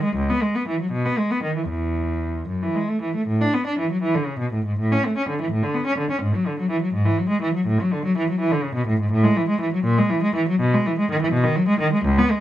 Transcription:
0.03 G#3
0.16 C#2
0.30 B3
0.42 G#3
0.55 B3
0.68 E3
0.81 F#3
0.92 B2
1.05 B3
1.18 G#3
1.31 B3
1.43 D#3
1.57 E3
1.69 E2
2.48 F#2
2.63 E3
2.75 G#3
2.89 A3
3.02 E3
3.15 A3
3.27 A2
3.41 D4
3.54 B3
3.67 D4
3.79 E3
3.91 F#3
4.02 E3
4.15 D3
4.26 C#3
4.39 B2
4.53 A2
4.66 G#2
4.79 A2
4.92 C#4
5.06 A3
5.17 C#4
5.29 D3
5.41 E3
5.52 A2
5.63 D3
5.74 B3
5.87 C#4
5.98 D3
6.11 C#4
6.22 G#2
6.35 F#3
6.47 D3
6.59 F#3
6.71 E3
6.82 F#3
6.94 G#2
7.05 E3
7.18 F#3
7.29 G#3
7.42 E3
7.54 F#3
7.67 A2
7.81 F#3
7.93 D3
8.05 F#3
8.17 E3
8.30 F#3
8.40 E3
8.52 D3
8.63 C#3
8.75 B2
8.87 A2
9.01 G#2
9.12 A2
9.24 G#3
9.37 E3
9.49 G#3
9.61 E3
9.73 F#3
9.84 A#2
9.98 G#3
10.10 E3
10.23 G#3
10.35 E3
10.48 F#3
10.60 B2
10.74 G#3
10.87 E3
10.98 G#3
11.11 D#3
11.22 E3
11.32 B2
11.44 D#3
11.56 F#3
11.68 G#3
11.80 D#3
11.93 G#3
12.05 C#2
12.18 B3
12.31 G#3

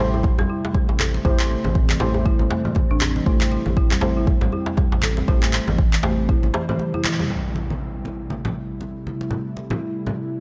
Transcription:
Already playing: C3 G3 A3 C4
0.00 A1 A3 E4 G4 C5, muted conga
0.14 E4, djembe tone
0.23 kick, high conga
0.39 A1 G3, muted conga, djembe tone, low conga
0.50 E4
0.65 djembe slap
0.74 G3, kick, muted conga, djembe tone, high conga
0.89 A1, djembe slap
1.00 A4, clap, djembe tone, high conga
1.14 muted conga
1.25 A1 A3 E4 G4 C5, kick, djembe tone, low conga
1.39 A3, clap
1.51 muted conga
1.64 A1 E3, high conga, djembe tone, low conga
1.75 kick
1.89 E3, clap, djembe tone
2.00 A1 A3 E4 G4 C5, djembe slap, muted conga, high conga, low conga
2.14 djembe tone
2.26 E4, kick
2.39 A1, muted conga, high conga
2.50 A3, djembe slap, djembe tone
2.65 E3, low conga
2.75 kick, muted conga, djembe tone, high conga
2.90 A1 D4
3.01 clap, djembe tone, high conga
3.16 E3, muted conga
3.26 A1 A3 E4 G4 C5, kick
3.41 clap, djembe tone
3.52 E4, muted conga
3.66 A1, high conga, djembe tone
3.77 E4, kick
3.91 G3, clap, djembe tone
4.01 A1 A3 E4 G4 C5, djembe slap, muted conga, high conga
4.17 E4
4.27 kick, djembe tone, high conga
4.41 A1 G3, muted conga, low conga
4.52 E4, djembe tone
4.66 djembe slap
4.77 G3, kick, muted conga, djembe tone, high conga
4.92 A1, djembe slap
5.03 A4, clap, high conga
5.17 muted conga, djembe tone
5.28 A1 A3 E4 G4 C5, kick, low conga
5.42 A3, clap, djembe tone
5.53 clap, muted conga
5.67 A1 E3, djembe tone, high conga, low conga
5.78 kick
5.93 E3, clap
6.03 A1 A3 E4 G4 C5, muted conga, djembe slap, high conga, djembe tone, low conga
6.29 E4, kick, high tom, djembe tone
6.43 A1, high tom, muted conga, high conga
6.54 E3 A3 E4 G4 C5, djembe slap, djembe tone
6.69 E3 A3 E4 G4 C5, mid tom, low conga
6.79 mid tom, muted conga, high conga
6.94 E4, djembe tone
7.04 E3, clap, mid tom, high conga
7.19 G3, mid tom, muted conga, djembe tone
7.30 C3 G3 A3 E4, impact
7.56 muted conga
7.70 high conga
8.05 muted conga, high conga
8.30 high conga
8.45 muted conga, low conga
8.81 muted conga, high conga
9.07 high conga
9.21 muted conga
9.31 low conga
9.57 muted conga
9.70 high conga, low conga
10.06 muted conga, high conga, low conga

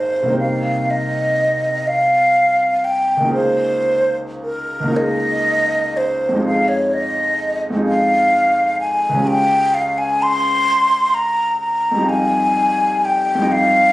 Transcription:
Already playing: G#1 A#3 D#4 G#4 C5
0.23 C2 A#3
0.30 D#4 G4
0.37 C5 F5
0.90 D#5
1.87 F5
2.84 G5
3.17 C#2 A#3
3.24 D#4 F4
3.31 G#4 C5
4.43 A#4
4.80 C#2 A#3
4.88 D#4 F4
4.95 G#4 D#5
5.97 C5
6.29 F2 G#3
6.36 D#4 F4
6.43 G#4 F5
6.68 C#5
6.94 D#5
7.70 F2 G#3
7.77 D#4 F4
7.84 G#4 F5
8.80 G#5
9.09 C#2 G#3
9.16 C#4 F4
9.23 G4 G5
9.74 F5
9.98 G#5
10.23 C6
11.14 A#5
11.60 A#5
11.91 F2 G3
11.98 D#4 F4
12.05 G4 G#5
13.05 G5
13.35 F2 G3
13.42 D#4 F4
13.49 G4 F5

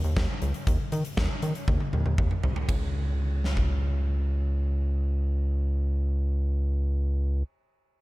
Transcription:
0.04 D#2, closed hi-hat
0.17 D#2, kick, snare
0.42 C#2, closed hi-hat
0.54 closed hi-hat
0.67 D#2, kick, closed hi-hat
0.92 D#3, closed hi-hat
1.05 closed hi-hat
1.17 D#2, kick, snare
1.42 D#3, closed hi-hat
1.55 closed hi-hat
1.68 D#2, kick, high tom
1.80 high tom
1.93 D#2, mid tom
2.06 D#2, mid tom
2.18 D#2, kick, mid tom
2.31 mid tom
2.43 C2, floor tom
2.56 floor tom
2.69 C#2, kick, ride
3.44 snare
3.57 kick

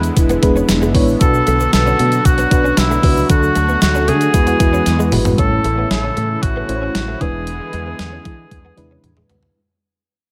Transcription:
Already playing: D3 E3 G#3 B3 D4 E4 B4
0.03 closed hi-hat, shaker
0.17 E1 E4, kick, closed hi-hat, shaker
0.29 B3, closed hi-hat, shaker
0.42 E1 G#3 B3 D4 E4 G#4 B4, muted clean electric guitar stroke, kick, closed hi-hat, shaker
0.56 C#4, shaker
0.69 E1, muted clean electric guitar stroke, snare, closed hi-hat, tambourine, shaker
0.82 G#3, shaker
0.94 A1 G#3 B3 D4 E4 C#5, kick, open hi-hat
1.08 shaker
1.20 B1 B2 F#3 D4 F#4 A4 B4, kick, closed hi-hat, shaker
1.34 muted clean electric guitar stroke, shaker
1.47 B1 A3, closed hi-hat, shaker
1.60 B3, shaker
1.73 B1 A4, muted clean electric guitar stroke, snare, closed hi-hat, tambourine, shaker
1.86 C#4, shaker
1.99 B2 A3, closed hi-hat
2.12 closed hi-hat, shaker
2.25 B1 F#4, kick, closed hi-hat, shaker
2.38 B3, closed hi-hat, shaker
2.51 B1 D4 F#4 B4, muted clean electric guitar stroke, kick, closed hi-hat, shaker
2.64 C#4, shaker
2.77 B1 E4, muted clean electric guitar stroke, snare, closed hi-hat, tambourine, shaker
2.90 A3, shaker
3.03 C#2 B3 D4 F#4 B4, kick, open hi-hat
3.17 shaker
3.29 D2 D3 A3 D4 F#4 A4, kick, closed hi-hat, shaker
3.43 muted clean electric guitar stroke, shaker
3.55 D2 A3, closed hi-hat, shaker
3.69 B3, shaker
3.81 D2 F#4, muted clean electric guitar stroke, snare, closed hi-hat, tambourine, shaker
3.95 C#4, shaker
4.08 D3 A3 G#4, closed hi-hat, shaker
4.21 closed hi-hat, shaker
4.34 E2 E3 G#3 B3 E4 F#4 B4, kick, closed hi-hat, shaker
4.47 B3, closed hi-hat, shaker
4.60 E2 G#3 B3 E4 F#4 B4, muted clean electric guitar stroke, kick, closed hi-hat, shaker
4.73 C#4, shaker
4.86 E2 B3, muted clean electric guitar stroke, snare, closed hi-hat, shaker
4.99 G#3, shaker
5.12 G#1 G#3 B3 E4 F#4 B4, mid tom, open hi-hat, shaker
5.25 floor tom, shaker
5.38 A1 A2 C#3 E3 A3 C#4 E4 A4 C#5, kick, closed hi-hat
5.52 muted clean electric guitar stroke
5.64 A1 A3, closed hi-hat
5.78 B3
5.91 A1 A4, muted clean electric guitar stroke, snare, closed hi-hat
6.04 C#4
6.17 A2 A3, closed hi-hat
6.42 A1 F#4, kick, closed hi-hat
6.56 B3
6.68 A1 A3 C#4 E4 C5, muted clean electric guitar stroke, closed hi-hat
6.76 C#5
6.82 C#4
6.95 A1, muted clean electric guitar stroke, snare, closed hi-hat
7.08 A3
7.20 E1 D3 E3 G#3 B3 D4 E4 G#4 B4, kick, closed hi-hat
7.47 closed hi-hat
7.60 muted clean electric guitar stroke
7.73 E2 G#3, closed hi-hat
7.86 B3
7.99 E2, muted clean electric guitar stroke, snare, closed hi-hat
8.12 C#4
8.25 E3 G#3, kick, closed hi-hat
8.51 E2, kick, closed hi-hat, high tom
8.65 B3
8.77 E2 G#3 D4 E4 B4, muted clean electric guitar stroke, closed hi-hat, mid tom
8.91 C#4
9.04 E2, muted clean electric guitar stroke, closed hi-hat, mid tom
9.17 G#3, mid tom
9.29 D2 B3, closed hi-hat, floor tom
9.43 floor tom

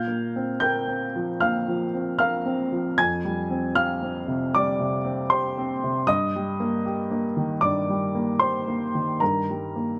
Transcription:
Already playing: A#2 F5 F6
0.08 A#3
0.36 C4
0.60 A#4 G5 G6
0.88 C4
1.16 F3
1.40 A#3 F5 F6
1.68 F3
1.94 C4
2.19 A#4 F5 F6
2.46 C4
2.72 F3
2.98 F2 G#5 G#6
3.25 G3
3.50 C4
3.75 G4 F5 F6
4.03 C4
4.28 C3
4.55 G3 D5 D6
4.80 C3
5.05 C4
5.30 G4 C5 C6
5.58 C4
5.84 C3
6.07 G2 D#5 D#6
6.36 G3
6.60 A#3
6.86 G4
7.11 A#3
7.37 D#3
7.61 G2 D5 D6
7.90 G3
8.15 A#3
8.39 G4 C5 C6
8.68 A#3
8.95 D#3
9.20 G2 A#4 A#5
9.50 G3
9.76 A#3

